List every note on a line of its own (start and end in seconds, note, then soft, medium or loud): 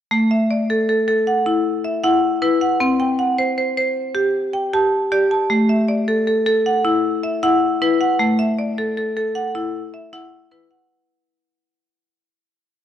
0.11 2.77 A3 medium
0.31 0.88 E5 medium
0.50 1.08 D5 medium
0.70 0.88 A4 medium
0.89 1.07 A4 medium
1.08 1.46 A4 medium
1.27 1.85 F#5 medium
1.46 1.85 E4 medium
1.84 2.42 E5 medium
2.04 2.41 E4 medium
2.04 2.60 F#5 medium
2.42 2.81 E4 medium
2.42 3.00 B4 medium
2.62 3.00 F#5 medium
2.81 5.46 C4 medium
3.00 3.58 G5 medium
3.19 3.77 F#5 medium
3.39 3.57 C5 medium
3.58 3.76 C5 medium
3.77 4.16 C5 medium
4.15 4.54 G4 medium
4.54 5.12 G5 medium
4.74 5.11 G4 medium
4.74 5.30 A5 medium
5.12 5.50 G4 medium
5.12 5.70 D5 medium
5.31 5.70 A5 soft
5.50 5.89 A3 medium
5.69 6.27 E5 medium
5.88 6.46 D5 medium
6.08 6.26 A4 medium
6.27 6.45 A4 medium
6.46 6.85 A4 medium
6.66 7.24 F#5 medium
6.85 7.23 E4 medium
7.23 7.81 E5 soft
7.43 7.80 E4 medium
7.43 7.99 F#5 medium
7.82 8.20 E4 medium
7.82 8.39 B4 soft
8.01 8.39 F#5 medium
8.19 10.86 A3 medium
8.39 8.97 E5 medium
8.59 9.17 D5 medium
8.78 8.96 A4 medium
8.97 9.15 A4 medium
9.17 9.55 A4 medium
9.35 9.93 F#5 medium
9.55 9.94 E4 medium
9.94 10.52 E5 soft
10.13 10.51 E4 medium
10.13 10.70 F#5 medium
10.52 10.91 E4 medium
10.52 11.10 B4 medium
10.71 11.10 F#5 medium